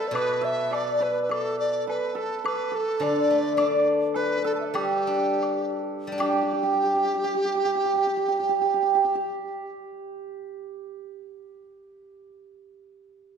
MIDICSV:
0, 0, Header, 1, 5, 480
1, 0, Start_track
1, 0, Tempo, 571973
1, 116, Time_signature, 2, 2, 24, 8
1, 3476, Tempo, 601805
1, 3956, Tempo, 668151
1, 4436, Tempo, 802139
1, 6356, Tempo, 829876
1, 9105, End_track
2, 0, Start_track
2, 0, Title_t, "Dizi"
2, 0, Program_c, 0, 73
2, 66, Note_on_c, 0, 74, 54
2, 117, Note_on_c, 0, 71, 84
2, 129, Note_off_c, 0, 74, 0
2, 374, Note_on_c, 0, 76, 75
2, 387, Note_off_c, 0, 71, 0
2, 626, Note_on_c, 0, 74, 73
2, 639, Note_off_c, 0, 76, 0
2, 863, Note_on_c, 0, 71, 67
2, 876, Note_off_c, 0, 74, 0
2, 1027, Note_off_c, 0, 71, 0
2, 1032, Note_on_c, 0, 71, 44
2, 1096, Note_on_c, 0, 69, 69
2, 1109, Note_off_c, 0, 71, 0
2, 1331, Note_off_c, 0, 69, 0
2, 1336, Note_on_c, 0, 74, 75
2, 1560, Note_off_c, 0, 74, 0
2, 1582, Note_on_c, 0, 71, 68
2, 1822, Note_on_c, 0, 69, 72
2, 1834, Note_off_c, 0, 71, 0
2, 2057, Note_off_c, 0, 69, 0
2, 2069, Note_on_c, 0, 71, 71
2, 2309, Note_on_c, 0, 69, 73
2, 2321, Note_off_c, 0, 71, 0
2, 2539, Note_on_c, 0, 74, 75
2, 2551, Note_off_c, 0, 69, 0
2, 3257, Note_off_c, 0, 74, 0
2, 3485, Note_on_c, 0, 71, 80
2, 3702, Note_off_c, 0, 71, 0
2, 3725, Note_on_c, 0, 69, 81
2, 3796, Note_off_c, 0, 69, 0
2, 3801, Note_on_c, 0, 81, 34
2, 3817, Note_off_c, 0, 81, 0
2, 3845, Note_on_c, 0, 76, 31
2, 3888, Note_off_c, 0, 76, 0
2, 3892, Note_on_c, 0, 74, 37
2, 3915, Note_off_c, 0, 74, 0
2, 3920, Note_on_c, 0, 71, 38
2, 3937, Note_off_c, 0, 71, 0
2, 3941, Note_on_c, 0, 69, 47
2, 3974, Note_on_c, 0, 67, 60
2, 3985, Note_off_c, 0, 69, 0
2, 4669, Note_off_c, 0, 67, 0
2, 4908, Note_on_c, 0, 67, 69
2, 7054, Note_off_c, 0, 67, 0
2, 9105, End_track
3, 0, Start_track
3, 0, Title_t, "Hammered dulcimer"
3, 0, Program_c, 1, 15
3, 0, Note_on_c, 1, 69, 76
3, 0, Note_on_c, 1, 71, 68
3, 0, Note_on_c, 1, 74, 70
3, 0, Note_on_c, 1, 76, 75
3, 0, Note_on_c, 1, 79, 81
3, 118, Note_off_c, 1, 71, 0
3, 121, Note_on_c, 1, 71, 68
3, 343, Note_off_c, 1, 76, 0
3, 346, Note_on_c, 1, 76, 71
3, 590, Note_off_c, 1, 74, 0
3, 593, Note_on_c, 1, 74, 65
3, 681, Note_off_c, 1, 79, 0
3, 839, Note_off_c, 1, 71, 0
3, 843, Note_on_c, 1, 71, 63
3, 1081, Note_off_c, 1, 69, 0
3, 1084, Note_on_c, 1, 69, 62
3, 1569, Note_off_c, 1, 71, 0
3, 1572, Note_on_c, 1, 71, 60
3, 1800, Note_off_c, 1, 69, 0
3, 1803, Note_on_c, 1, 69, 62
3, 2047, Note_off_c, 1, 71, 0
3, 2050, Note_on_c, 1, 71, 67
3, 2270, Note_off_c, 1, 76, 0
3, 2275, Note_off_c, 1, 69, 0
3, 2278, Note_on_c, 1, 69, 58
3, 2520, Note_off_c, 1, 74, 0
3, 2524, Note_on_c, 1, 74, 63
3, 3014, Note_off_c, 1, 74, 0
3, 3017, Note_on_c, 1, 74, 58
3, 3484, Note_off_c, 1, 71, 0
3, 3487, Note_on_c, 1, 71, 76
3, 3657, Note_off_c, 1, 71, 0
3, 3660, Note_on_c, 1, 71, 53
3, 3713, Note_off_c, 1, 69, 0
3, 3716, Note_on_c, 1, 69, 70
3, 3956, Note_on_c, 1, 67, 61
3, 4821, Note_off_c, 1, 74, 0
3, 4904, Note_off_c, 1, 67, 0
3, 4907, Note_on_c, 1, 67, 66
3, 4980, Note_off_c, 1, 67, 0
3, 4982, Note_on_c, 1, 67, 50
3, 5042, Note_off_c, 1, 67, 0
3, 5044, Note_on_c, 1, 67, 51
3, 5098, Note_off_c, 1, 67, 0
3, 5101, Note_on_c, 1, 67, 42
3, 5162, Note_off_c, 1, 67, 0
3, 5165, Note_on_c, 1, 67, 59
3, 5222, Note_off_c, 1, 67, 0
3, 5224, Note_on_c, 1, 67, 47
3, 5284, Note_off_c, 1, 67, 0
3, 5286, Note_on_c, 1, 67, 57
3, 5349, Note_off_c, 1, 67, 0
3, 5352, Note_on_c, 1, 67, 52
3, 5413, Note_off_c, 1, 67, 0
3, 5415, Note_on_c, 1, 67, 49
3, 5444, Note_off_c, 1, 71, 0
3, 5469, Note_off_c, 1, 67, 0
3, 5472, Note_on_c, 1, 67, 48
3, 5527, Note_off_c, 1, 67, 0
3, 5529, Note_on_c, 1, 67, 63
3, 5591, Note_off_c, 1, 67, 0
3, 5593, Note_on_c, 1, 67, 50
3, 5606, Note_off_c, 1, 69, 0
3, 5654, Note_off_c, 1, 67, 0
3, 5656, Note_on_c, 1, 67, 56
3, 5712, Note_off_c, 1, 67, 0
3, 5715, Note_on_c, 1, 67, 50
3, 5773, Note_off_c, 1, 67, 0
3, 5775, Note_on_c, 1, 67, 55
3, 5835, Note_off_c, 1, 67, 0
3, 5837, Note_on_c, 1, 67, 49
3, 5894, Note_off_c, 1, 67, 0
3, 5897, Note_on_c, 1, 67, 49
3, 5955, Note_off_c, 1, 67, 0
3, 5958, Note_on_c, 1, 67, 48
3, 6023, Note_off_c, 1, 67, 0
3, 6025, Note_on_c, 1, 67, 58
3, 6083, Note_off_c, 1, 67, 0
3, 6086, Note_on_c, 1, 67, 47
3, 6151, Note_off_c, 1, 67, 0
3, 6154, Note_on_c, 1, 67, 60
3, 6218, Note_off_c, 1, 67, 0
3, 6221, Note_on_c, 1, 67, 47
3, 6275, Note_off_c, 1, 67, 0
3, 6278, Note_on_c, 1, 67, 60
3, 6350, Note_off_c, 1, 67, 0
3, 6353, Note_on_c, 1, 67, 53
3, 6422, Note_off_c, 1, 67, 0
3, 6424, Note_on_c, 1, 67, 56
3, 6473, Note_off_c, 1, 67, 0
3, 6475, Note_on_c, 1, 67, 45
3, 6543, Note_off_c, 1, 67, 0
3, 6546, Note_on_c, 1, 67, 58
3, 6600, Note_off_c, 1, 67, 0
3, 6602, Note_on_c, 1, 67, 51
3, 6661, Note_off_c, 1, 67, 0
3, 6663, Note_on_c, 1, 67, 60
3, 8479, Note_off_c, 1, 67, 0
3, 9105, End_track
4, 0, Start_track
4, 0, Title_t, "Guzheng"
4, 0, Program_c, 2, 107
4, 93, Note_on_c, 2, 47, 55
4, 1564, Note_off_c, 2, 47, 0
4, 2514, Note_on_c, 2, 50, 54
4, 2773, Note_on_c, 2, 57, 42
4, 2996, Note_on_c, 2, 62, 46
4, 3718, Note_off_c, 2, 57, 0
4, 3950, Note_off_c, 2, 50, 0
4, 3950, Note_on_c, 2, 55, 53
4, 3956, Note_off_c, 2, 62, 0
4, 4191, Note_on_c, 2, 62, 43
4, 4824, Note_off_c, 2, 55, 0
4, 4831, Note_on_c, 2, 55, 45
4, 4852, Note_off_c, 2, 62, 0
4, 4860, Note_on_c, 2, 62, 46
4, 4895, Note_on_c, 2, 67, 48
4, 7258, Note_off_c, 2, 67, 0
4, 7662, Note_off_c, 2, 62, 0
4, 8390, Note_off_c, 2, 55, 0
4, 9105, End_track
5, 0, Start_track
5, 0, Title_t, "Drums"
5, 128, Note_on_c, 9, 76, 58
5, 212, Note_off_c, 9, 76, 0
5, 610, Note_on_c, 9, 76, 42
5, 610, Note_on_c, 9, 77, 44
5, 694, Note_off_c, 9, 76, 0
5, 694, Note_off_c, 9, 77, 0
5, 1103, Note_on_c, 9, 76, 53
5, 1187, Note_off_c, 9, 76, 0
5, 1591, Note_on_c, 9, 77, 43
5, 1675, Note_off_c, 9, 77, 0
5, 2061, Note_on_c, 9, 76, 57
5, 2145, Note_off_c, 9, 76, 0
5, 2532, Note_on_c, 9, 77, 47
5, 2616, Note_off_c, 9, 77, 0
5, 3004, Note_on_c, 9, 76, 55
5, 3088, Note_off_c, 9, 76, 0
5, 3478, Note_on_c, 9, 77, 43
5, 3558, Note_off_c, 9, 77, 0
5, 3962, Note_on_c, 9, 76, 52
5, 4034, Note_off_c, 9, 76, 0
5, 4445, Note_on_c, 9, 76, 41
5, 4505, Note_off_c, 9, 76, 0
5, 4909, Note_on_c, 9, 76, 65
5, 4968, Note_off_c, 9, 76, 0
5, 9105, End_track
0, 0, End_of_file